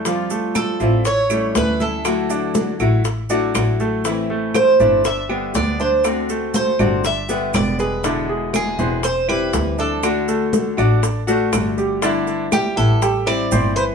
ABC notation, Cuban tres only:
X:1
M:4/4
L:1/8
Q:1/4=120
K:G
V:1 name="Cuban tres"
z2 A2 ^c2 B A- | A3 z4 z | z2 c2 e2 d c | z2 c2 e2 d B |
z2 ^G2 c B2 A- | A6- A z | z2 G A2 d2 c |]